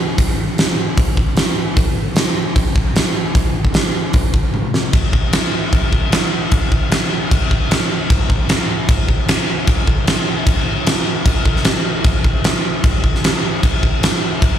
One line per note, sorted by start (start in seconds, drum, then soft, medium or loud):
0.18 kick loud
0.18 open hi-hat medium
0.58 snare loud
0.58 open hi-hat soft
0.97 kick loud
0.97 open hi-hat soft
1.17 kick medium
1.37 snare loud
1.37 open hi-hat soft
1.77 kick loud
1.77 open hi-hat soft
2.16 snare loud
2.16 open hi-hat soft
2.56 kick loud
2.56 open hi-hat soft
2.76 kick medium
2.96 snare loud
2.96 open hi-hat soft
3.35 kick loud
3.35 open hi-hat medium
3.65 kick medium
3.74 snare loud
3.74 open hi-hat soft
4.13 kick loud
4.13 open hi-hat medium
4.34 kick medium
4.54 high tom medium
4.74 snare medium
4.93 kick loud
4.93 crash medium
5.13 kick medium
5.33 snare loud
5.33 crash medium
5.73 kick loud
5.73 crash medium
5.93 kick medium
6.12 snare loud
6.12 crash medium
6.51 kick loud
6.51 crash medium
6.72 kick medium
6.91 snare loud
6.91 crash medium
7.31 kick loud
7.31 crash medium
7.51 kick medium
7.71 snare loud
7.71 crash medium
8.10 kick loud
8.10 crash medium
8.30 kick medium
8.49 snare loud
8.49 crash medium
8.89 kick loud
8.89 crash medium
9.09 kick medium
9.28 snare loud
9.28 crash medium
9.67 kick loud
9.67 crash medium
9.87 kick medium
10.07 snare loud
10.07 crash medium
10.47 kick loud
10.47 crash medium
10.86 snare loud
10.86 crash medium
11.26 kick loud
11.26 crash medium
11.45 kick medium
11.56 snare soft
11.64 snare loud
11.64 crash medium
12.04 kick loud
12.04 crash medium
12.24 kick medium
12.44 snare loud
12.44 crash medium
12.84 kick loud
12.84 crash medium
13.04 kick medium
13.15 snare soft
13.24 snare loud
13.24 crash medium
13.63 kick loud
13.63 crash medium
13.83 kick medium
14.03 snare loud
14.03 crash medium
14.42 kick loud
14.42 crash medium